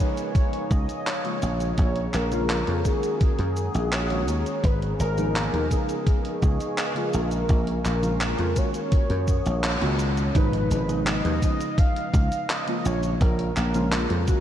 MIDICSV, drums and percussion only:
0, 0, Header, 1, 2, 480
1, 0, Start_track
1, 0, Tempo, 714286
1, 1197, Time_signature, 4, 2, 24, 8
1, 9678, End_track
2, 0, Start_track
2, 0, Title_t, "Drums"
2, 0, Note_on_c, 9, 42, 65
2, 0, Note_on_c, 9, 69, 61
2, 64, Note_off_c, 9, 42, 0
2, 64, Note_off_c, 9, 69, 0
2, 117, Note_on_c, 9, 42, 36
2, 117, Note_on_c, 9, 69, 33
2, 184, Note_off_c, 9, 42, 0
2, 184, Note_off_c, 9, 69, 0
2, 235, Note_on_c, 9, 36, 116
2, 237, Note_on_c, 9, 42, 88
2, 237, Note_on_c, 9, 69, 27
2, 302, Note_off_c, 9, 36, 0
2, 305, Note_off_c, 9, 42, 0
2, 305, Note_off_c, 9, 69, 0
2, 357, Note_on_c, 9, 42, 37
2, 424, Note_off_c, 9, 42, 0
2, 476, Note_on_c, 9, 36, 105
2, 478, Note_on_c, 9, 42, 34
2, 478, Note_on_c, 9, 69, 59
2, 543, Note_off_c, 9, 36, 0
2, 545, Note_off_c, 9, 42, 0
2, 545, Note_off_c, 9, 69, 0
2, 598, Note_on_c, 9, 42, 36
2, 598, Note_on_c, 9, 69, 35
2, 665, Note_off_c, 9, 42, 0
2, 665, Note_off_c, 9, 69, 0
2, 718, Note_on_c, 9, 39, 122
2, 718, Note_on_c, 9, 42, 88
2, 718, Note_on_c, 9, 69, 26
2, 786, Note_off_c, 9, 39, 0
2, 786, Note_off_c, 9, 42, 0
2, 786, Note_off_c, 9, 69, 0
2, 838, Note_on_c, 9, 42, 37
2, 906, Note_off_c, 9, 42, 0
2, 956, Note_on_c, 9, 42, 62
2, 956, Note_on_c, 9, 69, 61
2, 1023, Note_off_c, 9, 42, 0
2, 1023, Note_off_c, 9, 69, 0
2, 1077, Note_on_c, 9, 42, 37
2, 1077, Note_on_c, 9, 69, 35
2, 1145, Note_off_c, 9, 42, 0
2, 1145, Note_off_c, 9, 69, 0
2, 1194, Note_on_c, 9, 42, 84
2, 1194, Note_on_c, 9, 69, 26
2, 1196, Note_on_c, 9, 36, 109
2, 1261, Note_off_c, 9, 42, 0
2, 1261, Note_off_c, 9, 69, 0
2, 1263, Note_off_c, 9, 36, 0
2, 1314, Note_on_c, 9, 42, 37
2, 1381, Note_off_c, 9, 42, 0
2, 1436, Note_on_c, 9, 39, 58
2, 1436, Note_on_c, 9, 42, 62
2, 1436, Note_on_c, 9, 69, 61
2, 1503, Note_off_c, 9, 39, 0
2, 1503, Note_off_c, 9, 42, 0
2, 1503, Note_off_c, 9, 69, 0
2, 1557, Note_on_c, 9, 42, 36
2, 1557, Note_on_c, 9, 69, 34
2, 1624, Note_off_c, 9, 42, 0
2, 1624, Note_off_c, 9, 69, 0
2, 1677, Note_on_c, 9, 39, 114
2, 1677, Note_on_c, 9, 42, 89
2, 1677, Note_on_c, 9, 69, 28
2, 1744, Note_off_c, 9, 39, 0
2, 1744, Note_off_c, 9, 42, 0
2, 1744, Note_off_c, 9, 69, 0
2, 1796, Note_on_c, 9, 42, 37
2, 1863, Note_off_c, 9, 42, 0
2, 1916, Note_on_c, 9, 36, 57
2, 1916, Note_on_c, 9, 42, 62
2, 1916, Note_on_c, 9, 69, 65
2, 1983, Note_off_c, 9, 36, 0
2, 1983, Note_off_c, 9, 42, 0
2, 1983, Note_off_c, 9, 69, 0
2, 2037, Note_on_c, 9, 42, 37
2, 2037, Note_on_c, 9, 69, 35
2, 2104, Note_off_c, 9, 42, 0
2, 2104, Note_off_c, 9, 69, 0
2, 2156, Note_on_c, 9, 36, 109
2, 2156, Note_on_c, 9, 42, 88
2, 2156, Note_on_c, 9, 69, 28
2, 2223, Note_off_c, 9, 36, 0
2, 2223, Note_off_c, 9, 42, 0
2, 2223, Note_off_c, 9, 69, 0
2, 2275, Note_on_c, 9, 42, 38
2, 2342, Note_off_c, 9, 42, 0
2, 2397, Note_on_c, 9, 42, 34
2, 2397, Note_on_c, 9, 69, 64
2, 2464, Note_off_c, 9, 42, 0
2, 2464, Note_off_c, 9, 69, 0
2, 2517, Note_on_c, 9, 42, 37
2, 2517, Note_on_c, 9, 69, 36
2, 2585, Note_off_c, 9, 42, 0
2, 2585, Note_off_c, 9, 69, 0
2, 2637, Note_on_c, 9, 39, 117
2, 2637, Note_on_c, 9, 42, 91
2, 2637, Note_on_c, 9, 69, 27
2, 2704, Note_off_c, 9, 39, 0
2, 2704, Note_off_c, 9, 42, 0
2, 2704, Note_off_c, 9, 69, 0
2, 2757, Note_on_c, 9, 42, 37
2, 2825, Note_off_c, 9, 42, 0
2, 2877, Note_on_c, 9, 42, 62
2, 2877, Note_on_c, 9, 69, 62
2, 2945, Note_off_c, 9, 42, 0
2, 2945, Note_off_c, 9, 69, 0
2, 3000, Note_on_c, 9, 42, 37
2, 3000, Note_on_c, 9, 69, 35
2, 3067, Note_off_c, 9, 42, 0
2, 3067, Note_off_c, 9, 69, 0
2, 3117, Note_on_c, 9, 36, 112
2, 3119, Note_on_c, 9, 42, 87
2, 3119, Note_on_c, 9, 69, 27
2, 3184, Note_off_c, 9, 36, 0
2, 3186, Note_off_c, 9, 42, 0
2, 3186, Note_off_c, 9, 69, 0
2, 3242, Note_on_c, 9, 42, 37
2, 3309, Note_off_c, 9, 42, 0
2, 3360, Note_on_c, 9, 42, 64
2, 3360, Note_on_c, 9, 69, 64
2, 3427, Note_off_c, 9, 42, 0
2, 3427, Note_off_c, 9, 69, 0
2, 3480, Note_on_c, 9, 42, 36
2, 3480, Note_on_c, 9, 69, 36
2, 3547, Note_off_c, 9, 42, 0
2, 3547, Note_off_c, 9, 69, 0
2, 3601, Note_on_c, 9, 39, 115
2, 3601, Note_on_c, 9, 42, 90
2, 3601, Note_on_c, 9, 69, 28
2, 3668, Note_off_c, 9, 39, 0
2, 3668, Note_off_c, 9, 42, 0
2, 3668, Note_off_c, 9, 69, 0
2, 3721, Note_on_c, 9, 42, 37
2, 3789, Note_off_c, 9, 42, 0
2, 3837, Note_on_c, 9, 36, 58
2, 3839, Note_on_c, 9, 42, 67
2, 3839, Note_on_c, 9, 69, 68
2, 3904, Note_off_c, 9, 36, 0
2, 3907, Note_off_c, 9, 42, 0
2, 3907, Note_off_c, 9, 69, 0
2, 3958, Note_on_c, 9, 42, 38
2, 3958, Note_on_c, 9, 69, 38
2, 4026, Note_off_c, 9, 42, 0
2, 4026, Note_off_c, 9, 69, 0
2, 4076, Note_on_c, 9, 36, 111
2, 4078, Note_on_c, 9, 42, 90
2, 4078, Note_on_c, 9, 69, 28
2, 4144, Note_off_c, 9, 36, 0
2, 4145, Note_off_c, 9, 42, 0
2, 4145, Note_off_c, 9, 69, 0
2, 4199, Note_on_c, 9, 42, 40
2, 4266, Note_off_c, 9, 42, 0
2, 4317, Note_on_c, 9, 36, 97
2, 4318, Note_on_c, 9, 42, 35
2, 4318, Note_on_c, 9, 69, 66
2, 4384, Note_off_c, 9, 36, 0
2, 4385, Note_off_c, 9, 42, 0
2, 4385, Note_off_c, 9, 69, 0
2, 4438, Note_on_c, 9, 42, 38
2, 4438, Note_on_c, 9, 69, 38
2, 4505, Note_off_c, 9, 42, 0
2, 4505, Note_off_c, 9, 69, 0
2, 4555, Note_on_c, 9, 39, 113
2, 4555, Note_on_c, 9, 42, 87
2, 4555, Note_on_c, 9, 69, 29
2, 4622, Note_off_c, 9, 39, 0
2, 4622, Note_off_c, 9, 42, 0
2, 4622, Note_off_c, 9, 69, 0
2, 4677, Note_on_c, 9, 42, 38
2, 4744, Note_off_c, 9, 42, 0
2, 4795, Note_on_c, 9, 42, 63
2, 4795, Note_on_c, 9, 69, 66
2, 4862, Note_off_c, 9, 42, 0
2, 4862, Note_off_c, 9, 69, 0
2, 4915, Note_on_c, 9, 42, 38
2, 4915, Note_on_c, 9, 69, 38
2, 4982, Note_off_c, 9, 42, 0
2, 4982, Note_off_c, 9, 69, 0
2, 5034, Note_on_c, 9, 42, 91
2, 5034, Note_on_c, 9, 69, 27
2, 5036, Note_on_c, 9, 36, 115
2, 5102, Note_off_c, 9, 42, 0
2, 5102, Note_off_c, 9, 69, 0
2, 5103, Note_off_c, 9, 36, 0
2, 5155, Note_on_c, 9, 42, 40
2, 5223, Note_off_c, 9, 42, 0
2, 5277, Note_on_c, 9, 39, 56
2, 5277, Note_on_c, 9, 42, 64
2, 5277, Note_on_c, 9, 69, 66
2, 5344, Note_off_c, 9, 39, 0
2, 5344, Note_off_c, 9, 42, 0
2, 5344, Note_off_c, 9, 69, 0
2, 5397, Note_on_c, 9, 42, 38
2, 5397, Note_on_c, 9, 69, 37
2, 5464, Note_off_c, 9, 42, 0
2, 5464, Note_off_c, 9, 69, 0
2, 5515, Note_on_c, 9, 39, 114
2, 5515, Note_on_c, 9, 42, 96
2, 5515, Note_on_c, 9, 69, 29
2, 5583, Note_off_c, 9, 39, 0
2, 5583, Note_off_c, 9, 42, 0
2, 5583, Note_off_c, 9, 69, 0
2, 5635, Note_on_c, 9, 42, 39
2, 5702, Note_off_c, 9, 42, 0
2, 5753, Note_on_c, 9, 42, 68
2, 5753, Note_on_c, 9, 69, 70
2, 5755, Note_on_c, 9, 36, 57
2, 5821, Note_off_c, 9, 42, 0
2, 5821, Note_off_c, 9, 69, 0
2, 5822, Note_off_c, 9, 36, 0
2, 5875, Note_on_c, 9, 42, 40
2, 5875, Note_on_c, 9, 69, 38
2, 5942, Note_off_c, 9, 42, 0
2, 5942, Note_off_c, 9, 69, 0
2, 5994, Note_on_c, 9, 42, 90
2, 5994, Note_on_c, 9, 69, 29
2, 5995, Note_on_c, 9, 36, 113
2, 6061, Note_off_c, 9, 42, 0
2, 6061, Note_off_c, 9, 69, 0
2, 6062, Note_off_c, 9, 36, 0
2, 6115, Note_on_c, 9, 42, 42
2, 6182, Note_off_c, 9, 42, 0
2, 6235, Note_on_c, 9, 36, 59
2, 6235, Note_on_c, 9, 42, 37
2, 6235, Note_on_c, 9, 69, 66
2, 6302, Note_off_c, 9, 36, 0
2, 6302, Note_off_c, 9, 42, 0
2, 6302, Note_off_c, 9, 69, 0
2, 6356, Note_on_c, 9, 42, 40
2, 6356, Note_on_c, 9, 69, 39
2, 6423, Note_off_c, 9, 42, 0
2, 6423, Note_off_c, 9, 69, 0
2, 6476, Note_on_c, 9, 39, 112
2, 6476, Note_on_c, 9, 42, 96
2, 6476, Note_on_c, 9, 69, 30
2, 6543, Note_off_c, 9, 39, 0
2, 6543, Note_off_c, 9, 42, 0
2, 6543, Note_off_c, 9, 69, 0
2, 6597, Note_on_c, 9, 42, 41
2, 6664, Note_off_c, 9, 42, 0
2, 6715, Note_on_c, 9, 42, 65
2, 6715, Note_on_c, 9, 69, 66
2, 6782, Note_off_c, 9, 42, 0
2, 6782, Note_off_c, 9, 69, 0
2, 6837, Note_on_c, 9, 42, 41
2, 6837, Note_on_c, 9, 69, 39
2, 6904, Note_off_c, 9, 42, 0
2, 6904, Note_off_c, 9, 69, 0
2, 6956, Note_on_c, 9, 36, 118
2, 6957, Note_on_c, 9, 42, 95
2, 6957, Note_on_c, 9, 69, 27
2, 7023, Note_off_c, 9, 36, 0
2, 7024, Note_off_c, 9, 42, 0
2, 7024, Note_off_c, 9, 69, 0
2, 7079, Note_on_c, 9, 42, 39
2, 7146, Note_off_c, 9, 42, 0
2, 7198, Note_on_c, 9, 42, 67
2, 7198, Note_on_c, 9, 69, 68
2, 7266, Note_off_c, 9, 42, 0
2, 7266, Note_off_c, 9, 69, 0
2, 7319, Note_on_c, 9, 42, 42
2, 7319, Note_on_c, 9, 69, 36
2, 7387, Note_off_c, 9, 42, 0
2, 7387, Note_off_c, 9, 69, 0
2, 7437, Note_on_c, 9, 39, 121
2, 7437, Note_on_c, 9, 42, 98
2, 7437, Note_on_c, 9, 69, 30
2, 7504, Note_off_c, 9, 39, 0
2, 7504, Note_off_c, 9, 42, 0
2, 7504, Note_off_c, 9, 69, 0
2, 7560, Note_on_c, 9, 42, 42
2, 7627, Note_off_c, 9, 42, 0
2, 7676, Note_on_c, 9, 36, 62
2, 7677, Note_on_c, 9, 42, 74
2, 7677, Note_on_c, 9, 69, 67
2, 7743, Note_off_c, 9, 36, 0
2, 7745, Note_off_c, 9, 42, 0
2, 7745, Note_off_c, 9, 69, 0
2, 7799, Note_on_c, 9, 42, 43
2, 7799, Note_on_c, 9, 69, 40
2, 7866, Note_off_c, 9, 42, 0
2, 7866, Note_off_c, 9, 69, 0
2, 7915, Note_on_c, 9, 36, 122
2, 7918, Note_on_c, 9, 42, 99
2, 7918, Note_on_c, 9, 69, 29
2, 7983, Note_off_c, 9, 36, 0
2, 7986, Note_off_c, 9, 42, 0
2, 7986, Note_off_c, 9, 69, 0
2, 8040, Note_on_c, 9, 42, 43
2, 8107, Note_off_c, 9, 42, 0
2, 8156, Note_on_c, 9, 36, 110
2, 8159, Note_on_c, 9, 42, 67
2, 8159, Note_on_c, 9, 69, 67
2, 8223, Note_off_c, 9, 36, 0
2, 8226, Note_off_c, 9, 42, 0
2, 8226, Note_off_c, 9, 69, 0
2, 8278, Note_on_c, 9, 42, 43
2, 8278, Note_on_c, 9, 69, 38
2, 8345, Note_off_c, 9, 42, 0
2, 8345, Note_off_c, 9, 69, 0
2, 8398, Note_on_c, 9, 39, 123
2, 8398, Note_on_c, 9, 42, 102
2, 8398, Note_on_c, 9, 69, 31
2, 8465, Note_off_c, 9, 39, 0
2, 8465, Note_off_c, 9, 42, 0
2, 8465, Note_off_c, 9, 69, 0
2, 8518, Note_on_c, 9, 42, 41
2, 8585, Note_off_c, 9, 42, 0
2, 8638, Note_on_c, 9, 42, 42
2, 8638, Note_on_c, 9, 69, 70
2, 8705, Note_off_c, 9, 42, 0
2, 8705, Note_off_c, 9, 69, 0
2, 8757, Note_on_c, 9, 42, 38
2, 8757, Note_on_c, 9, 69, 37
2, 8824, Note_off_c, 9, 42, 0
2, 8824, Note_off_c, 9, 69, 0
2, 8876, Note_on_c, 9, 36, 120
2, 8876, Note_on_c, 9, 42, 91
2, 8876, Note_on_c, 9, 69, 26
2, 8943, Note_off_c, 9, 36, 0
2, 8943, Note_off_c, 9, 42, 0
2, 8943, Note_off_c, 9, 69, 0
2, 8997, Note_on_c, 9, 42, 43
2, 9064, Note_off_c, 9, 42, 0
2, 9116, Note_on_c, 9, 39, 61
2, 9116, Note_on_c, 9, 42, 66
2, 9116, Note_on_c, 9, 69, 65
2, 9183, Note_off_c, 9, 39, 0
2, 9183, Note_off_c, 9, 42, 0
2, 9183, Note_off_c, 9, 69, 0
2, 9236, Note_on_c, 9, 42, 40
2, 9236, Note_on_c, 9, 69, 36
2, 9303, Note_off_c, 9, 42, 0
2, 9303, Note_off_c, 9, 69, 0
2, 9355, Note_on_c, 9, 39, 126
2, 9355, Note_on_c, 9, 42, 100
2, 9355, Note_on_c, 9, 69, 28
2, 9422, Note_off_c, 9, 39, 0
2, 9422, Note_off_c, 9, 42, 0
2, 9422, Note_off_c, 9, 69, 0
2, 9476, Note_on_c, 9, 42, 42
2, 9543, Note_off_c, 9, 42, 0
2, 9594, Note_on_c, 9, 42, 72
2, 9594, Note_on_c, 9, 69, 66
2, 9596, Note_on_c, 9, 36, 65
2, 9661, Note_off_c, 9, 42, 0
2, 9661, Note_off_c, 9, 69, 0
2, 9663, Note_off_c, 9, 36, 0
2, 9678, End_track
0, 0, End_of_file